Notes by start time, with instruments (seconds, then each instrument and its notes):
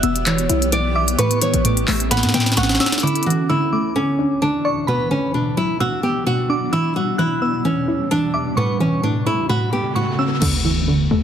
Already playing: synth pluck E3 G3, ambient pad E3 B3 G4, nylon-string guitar E5
0.03 808-style bass E1, synth pluck B3, synth bell E6, closed hi-hat
0.16 closed hi-hat
0.26 synth pluck E3, nylon-string guitar C#5, clap, closed hi-hat
0.38 closed hi-hat
0.49 808-style bass B1, synth pluck E4, closed hi-hat
0.62 closed hi-hat
0.72 synth pluck E3, nylon-string guitar D5, closed hi-hat
0.95 synth pluck E5, synth bell D6
1.08 closed hi-hat
1.18 synth pluck A2, ambient pad C#4 A4, nylon-string guitar B4, synth bell C#6, closed hi-hat
1.31 closed hi-hat
1.42 synth pluck E3, nylon-string guitar C#5, closed hi-hat
1.54 808-style bass A1, closed hi-hat
1.65 synth pluck A2, nylon-string guitar D5, closed hi-hat
1.77 closed hi-hat
1.88 808-style bass A1, synth pluck A3, nylon-string guitar E5, clap, open hi-hat
2.00 closed hi-hat
2.11 synth pluck A2, nylon-string guitar F#5, synth bell B5, snare, closed hi-hat
2.17 snare
2.23 808-style bass A2, snare, closed hi-hat
2.29 snare
2.34 808-style bass A2, synth pluck B3, nylon-string guitar G5, snare, closed hi-hat
2.40 snare
2.46 snare, closed hi-hat
2.52 snare
2.57 808-style bass A1, synth pluck A2, nylon-string guitar F#5, synth bell C#6, snare, closed hi-hat
2.63 snare
2.69 snare
2.75 snare
2.80 synth pluck C#4, synth bell E6, snare
2.86 snare
2.92 snare, closed hi-hat
2.98 snare, closed hi-hat
3.03 ambient pad D2 A2 E3, synth pluck D3, nylon-string guitar E4, synth bell D6
3.07 closed hi-hat
3.15 closed hi-hat
3.23 synth pluck E3, nylon-string guitar F#4, closed hi-hat
3.30 closed hi-hat
3.49 synth pluck D3, nylon-string guitar E4, synth bell E6
3.73 synth pluck A3, synth bell D6
3.96 synth pluck D3, nylon-string guitar C#4
4.19 synth pluck D4
4.42 synth pluck D3, nylon-string guitar D4
4.65 synth pluck D5, synth bell C#6
4.87 ambient pad B2 F#3 D4, synth pluck B2, nylon-string guitar B3, synth bell B5
5.11 synth pluck D3, nylon-string guitar C#4
5.34 synth pluck B2, nylon-string guitar D4
5.57 synth pluck F#3, nylon-string guitar E4
5.80 synth pluck B2, nylon-string guitar F#4, synth bell E6
6.03 synth pluck B3, nylon-string guitar G4
6.26 synth pluck B2, nylon-string guitar F#4
6.49 synth pluck D4, synth bell D6
6.73 ambient pad E2 B2 G3, synth pluck E3, nylon-string guitar E4, synth bell E6
6.96 synth pluck G3, nylon-string guitar F#4
7.18 synth pluck E3, nylon-string guitar E4, synth bell F#6
7.42 synth pluck B3, synth bell E6
7.65 synth pluck E3, nylon-string guitar C#4
7.88 synth pluck E4
8.11 synth pluck E3, nylon-string guitar D4
8.34 synth pluck E5, synth bell D6
8.57 synth pluck A2, ambient pad C#3 A3 B3, nylon-string guitar B3, synth bell C#6, riser
8.80 synth pluck E3, nylon-string guitar C#4
9.03 synth pluck A2, nylon-string guitar D4
9.26 synth pluck A3, nylon-string guitar E4
9.49 synth pluck A2, nylon-string guitar F#4, synth bell B5
9.73 synth pluck B3, nylon-string guitar G4
9.95 synth pluck A2, nylon-string guitar F#4, synth bell C#6
10.19 synth pluck C#4, synth bell E6
10.42 808-style bass D2, synth pluck D3, crash, impact
10.65 synth pluck E3
10.88 synth pluck D3
11.11 808-style bass D2, synth pluck A3